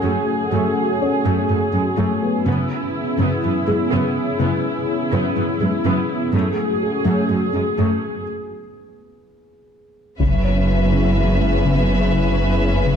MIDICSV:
0, 0, Header, 1, 11, 480
1, 0, Start_track
1, 0, Key_signature, 3, "minor"
1, 0, Tempo, 483871
1, 521, Time_signature, 4, 2, 24, 8
1, 12857, End_track
2, 0, Start_track
2, 0, Title_t, "Violin section"
2, 0, Program_c, 0, 48
2, 10118, Note_on_c, 0, 76, 45
2, 12857, Note_off_c, 0, 76, 0
2, 12857, End_track
3, 0, Start_track
3, 0, Title_t, "Violin section"
3, 0, Program_c, 1, 48
3, 10118, Note_on_c, 1, 71, 41
3, 12857, Note_off_c, 1, 71, 0
3, 12857, End_track
4, 0, Start_track
4, 0, Title_t, "Felt piano"
4, 0, Program_c, 2, 0
4, 0, Control_c, 2, 64, 127
4, 0, Note_on_c, 2, 68, 37
4, 518, Note_on_c, 2, 69, 38
4, 963, Note_off_c, 2, 68, 0
4, 1005, Note_on_c, 2, 61, 29
4, 1009, Note_on_c, 2, 73, 44
4, 1920, Note_off_c, 2, 69, 0
4, 2201, Note_on_c, 2, 59, 31
4, 2207, Note_on_c, 2, 71, 31
4, 2403, Note_off_c, 2, 61, 0
4, 2405, Note_off_c, 2, 73, 0
4, 2462, Control_c, 2, 64, 0
4, 2637, Control_c, 2, 64, 127
4, 3601, Note_off_c, 2, 59, 0
4, 3604, Note_off_c, 2, 71, 0
4, 3644, Note_on_c, 2, 68, 47
4, 5042, Note_off_c, 2, 68, 0
4, 5084, Note_on_c, 2, 71, 41
4, 5085, Note_on_c, 2, 59, 34
4, 6300, Control_c, 2, 64, 0
4, 6453, Control_c, 2, 64, 127
4, 6482, Note_off_c, 2, 71, 0
4, 6483, Note_off_c, 2, 59, 0
4, 6773, Note_on_c, 2, 68, 35
4, 8167, Note_off_c, 2, 68, 0
4, 10139, Control_c, 2, 64, 0
4, 10306, Control_c, 2, 64, 127
4, 10359, Note_on_c, 2, 73, 31
4, 11760, Note_off_c, 2, 73, 0
4, 12857, End_track
5, 0, Start_track
5, 0, Title_t, "Analog synth pad"
5, 0, Program_c, 3, 89
5, 0, Note_on_c, 3, 57, 54
5, 0, Note_on_c, 3, 61, 54
5, 0, Note_on_c, 3, 66, 54
5, 0, Note_on_c, 3, 80, 49
5, 2396, Note_off_c, 3, 61, 0
5, 2435, Note_off_c, 3, 80, 0
5, 2436, Note_off_c, 3, 66, 0
5, 2437, Note_off_c, 3, 57, 0
5, 2450, Note_on_c, 3, 59, 53
5, 2452, Note_on_c, 3, 64, 52
5, 2453, Note_on_c, 3, 61, 51
5, 2454, Note_on_c, 3, 68, 55
5, 6247, Note_off_c, 3, 61, 0
5, 6248, Note_off_c, 3, 68, 0
5, 6281, Note_on_c, 3, 66, 54
5, 6282, Note_on_c, 3, 57, 55
5, 6284, Note_on_c, 3, 61, 60
5, 6285, Note_off_c, 3, 59, 0
5, 6286, Note_off_c, 3, 64, 0
5, 6287, Note_on_c, 3, 68, 55
5, 8162, Note_off_c, 3, 61, 0
5, 8164, Note_off_c, 3, 68, 0
5, 8201, Note_off_c, 3, 57, 0
5, 8201, Note_off_c, 3, 66, 0
5, 10111, Note_on_c, 3, 61, 57
5, 10115, Note_on_c, 3, 64, 51
5, 10119, Note_on_c, 3, 59, 53
5, 10120, Note_on_c, 3, 68, 52
5, 12857, Note_off_c, 3, 59, 0
5, 12857, Note_off_c, 3, 61, 0
5, 12857, Note_off_c, 3, 64, 0
5, 12857, Note_off_c, 3, 68, 0
5, 12857, End_track
6, 0, Start_track
6, 0, Title_t, "Viola section"
6, 0, Program_c, 4, 48
6, 0, Note_on_c, 4, 68, 37
6, 33, Note_on_c, 4, 57, 47
6, 260, Note_off_c, 4, 57, 0
6, 521, Note_on_c, 4, 57, 46
6, 744, Note_off_c, 4, 57, 0
6, 1237, Note_on_c, 4, 57, 45
6, 1462, Note_off_c, 4, 57, 0
6, 1478, Note_on_c, 4, 57, 39
6, 1558, Note_off_c, 4, 57, 0
6, 1724, Note_on_c, 4, 56, 38
6, 1803, Note_off_c, 4, 56, 0
6, 1961, Note_on_c, 4, 57, 48
6, 2184, Note_off_c, 4, 57, 0
6, 2439, Note_off_c, 4, 68, 0
6, 2446, Note_on_c, 4, 64, 48
6, 2449, Note_on_c, 4, 59, 48
6, 2668, Note_off_c, 4, 59, 0
6, 3167, Note_on_c, 4, 59, 49
6, 3387, Note_off_c, 4, 59, 0
6, 3409, Note_on_c, 4, 59, 45
6, 3488, Note_off_c, 4, 59, 0
6, 3645, Note_on_c, 4, 56, 40
6, 3724, Note_off_c, 4, 56, 0
6, 3886, Note_on_c, 4, 59, 60
6, 4107, Note_off_c, 4, 59, 0
6, 4363, Note_on_c, 4, 59, 50
6, 4585, Note_off_c, 4, 59, 0
6, 5079, Note_on_c, 4, 59, 54
6, 5303, Note_off_c, 4, 59, 0
6, 5319, Note_on_c, 4, 59, 39
6, 5398, Note_off_c, 4, 59, 0
6, 5562, Note_on_c, 4, 56, 37
6, 5642, Note_off_c, 4, 56, 0
6, 5803, Note_on_c, 4, 59, 49
6, 6025, Note_off_c, 4, 59, 0
6, 6244, Note_off_c, 4, 64, 0
6, 6276, Note_on_c, 4, 68, 44
6, 6278, Note_on_c, 4, 57, 60
6, 6503, Note_off_c, 4, 57, 0
6, 7000, Note_on_c, 4, 57, 43
6, 7224, Note_off_c, 4, 57, 0
6, 7243, Note_on_c, 4, 57, 39
6, 7323, Note_off_c, 4, 57, 0
6, 7479, Note_on_c, 4, 56, 40
6, 7558, Note_off_c, 4, 56, 0
6, 7719, Note_on_c, 4, 57, 42
6, 7943, Note_off_c, 4, 57, 0
6, 8198, Note_off_c, 4, 68, 0
6, 10114, Note_on_c, 4, 61, 41
6, 12857, Note_off_c, 4, 61, 0
6, 12857, End_track
7, 0, Start_track
7, 0, Title_t, "Synth arpeggio sound"
7, 0, Program_c, 5, 84
7, 34, Note_on_c, 5, 54, 69
7, 180, Note_off_c, 5, 54, 0
7, 520, Note_on_c, 5, 54, 68
7, 664, Note_off_c, 5, 54, 0
7, 1239, Note_on_c, 5, 54, 72
7, 1384, Note_off_c, 5, 54, 0
7, 1479, Note_on_c, 5, 57, 49
7, 1623, Note_off_c, 5, 57, 0
7, 1719, Note_on_c, 5, 61, 47
7, 1863, Note_off_c, 5, 61, 0
7, 1962, Note_on_c, 5, 54, 72
7, 2106, Note_off_c, 5, 54, 0
7, 2443, Note_on_c, 5, 49, 73
7, 2586, Note_off_c, 5, 49, 0
7, 3155, Note_on_c, 5, 49, 69
7, 3301, Note_off_c, 5, 49, 0
7, 3405, Note_on_c, 5, 52, 48
7, 3547, Note_off_c, 5, 52, 0
7, 3646, Note_on_c, 5, 56, 47
7, 3789, Note_off_c, 5, 56, 0
7, 3885, Note_on_c, 5, 49, 76
7, 4028, Note_off_c, 5, 49, 0
7, 4361, Note_on_c, 5, 49, 72
7, 4505, Note_off_c, 5, 49, 0
7, 5078, Note_on_c, 5, 49, 65
7, 5223, Note_off_c, 5, 49, 0
7, 5321, Note_on_c, 5, 52, 49
7, 5465, Note_off_c, 5, 52, 0
7, 5563, Note_on_c, 5, 56, 51
7, 5706, Note_off_c, 5, 56, 0
7, 5802, Note_on_c, 5, 49, 69
7, 5946, Note_off_c, 5, 49, 0
7, 6277, Note_on_c, 5, 54, 68
7, 6422, Note_off_c, 5, 54, 0
7, 6995, Note_on_c, 5, 54, 70
7, 7141, Note_off_c, 5, 54, 0
7, 7235, Note_on_c, 5, 57, 47
7, 7381, Note_off_c, 5, 57, 0
7, 7474, Note_on_c, 5, 61, 46
7, 7620, Note_off_c, 5, 61, 0
7, 7719, Note_on_c, 5, 54, 68
7, 7863, Note_off_c, 5, 54, 0
7, 10118, Note_on_c, 5, 49, 65
7, 10263, Note_off_c, 5, 49, 0
7, 10838, Note_on_c, 5, 49, 66
7, 10983, Note_off_c, 5, 49, 0
7, 11079, Note_on_c, 5, 52, 45
7, 11223, Note_off_c, 5, 52, 0
7, 11319, Note_on_c, 5, 56, 46
7, 11463, Note_off_c, 5, 56, 0
7, 11561, Note_on_c, 5, 49, 71
7, 11705, Note_off_c, 5, 49, 0
7, 12033, Note_on_c, 5, 49, 66
7, 12179, Note_off_c, 5, 49, 0
7, 12762, Note_on_c, 5, 49, 65
7, 12857, Note_off_c, 5, 49, 0
7, 12857, End_track
8, 0, Start_track
8, 0, Title_t, "Cello section"
8, 0, Program_c, 6, 48
8, 37, Note_on_c, 6, 42, 48
8, 117, Note_off_c, 6, 42, 0
8, 517, Note_on_c, 6, 42, 45
8, 597, Note_off_c, 6, 42, 0
8, 1245, Note_on_c, 6, 42, 48
8, 1324, Note_off_c, 6, 42, 0
8, 1482, Note_on_c, 6, 42, 34
8, 1562, Note_off_c, 6, 42, 0
8, 1717, Note_on_c, 6, 42, 39
8, 1797, Note_off_c, 6, 42, 0
8, 1958, Note_on_c, 6, 42, 53
8, 2037, Note_off_c, 6, 42, 0
8, 2446, Note_on_c, 6, 42, 54
8, 2526, Note_off_c, 6, 42, 0
8, 3163, Note_on_c, 6, 42, 54
8, 3242, Note_off_c, 6, 42, 0
8, 3410, Note_on_c, 6, 42, 34
8, 3489, Note_off_c, 6, 42, 0
8, 3645, Note_on_c, 6, 42, 41
8, 3724, Note_off_c, 6, 42, 0
8, 3891, Note_on_c, 6, 42, 55
8, 3970, Note_off_c, 6, 42, 0
8, 4367, Note_on_c, 6, 42, 51
8, 4447, Note_off_c, 6, 42, 0
8, 5084, Note_on_c, 6, 42, 55
8, 5163, Note_off_c, 6, 42, 0
8, 5326, Note_on_c, 6, 42, 37
8, 5406, Note_off_c, 6, 42, 0
8, 5565, Note_on_c, 6, 42, 38
8, 5645, Note_off_c, 6, 42, 0
8, 5804, Note_on_c, 6, 42, 58
8, 5884, Note_off_c, 6, 42, 0
8, 6286, Note_on_c, 6, 42, 55
8, 6365, Note_off_c, 6, 42, 0
8, 7001, Note_on_c, 6, 42, 50
8, 7080, Note_off_c, 6, 42, 0
8, 7241, Note_on_c, 6, 42, 36
8, 7321, Note_off_c, 6, 42, 0
8, 7476, Note_on_c, 6, 42, 35
8, 7556, Note_off_c, 6, 42, 0
8, 7726, Note_on_c, 6, 42, 46
8, 7806, Note_off_c, 6, 42, 0
8, 10122, Note_on_c, 6, 42, 45
8, 12857, Note_off_c, 6, 42, 0
8, 12857, End_track
9, 0, Start_track
9, 0, Title_t, "Double bass section"
9, 0, Program_c, 7, 48
9, 10121, Note_on_c, 7, 30, 44
9, 12857, Note_off_c, 7, 30, 0
9, 12857, End_track
10, 0, Start_track
10, 0, Title_t, "Sub bass"
10, 0, Program_c, 8, 38
10, 10117, Note_on_c, 8, 30, 54
10, 12857, Note_off_c, 8, 30, 0
10, 12857, End_track
11, 0, Start_track
11, 0, Title_t, "Taiko and cinematic ensemble drums"
11, 10116, Note_on_c, 9, 41, 52
11, 10216, Note_off_c, 9, 41, 0
11, 12857, End_track
0, 0, End_of_file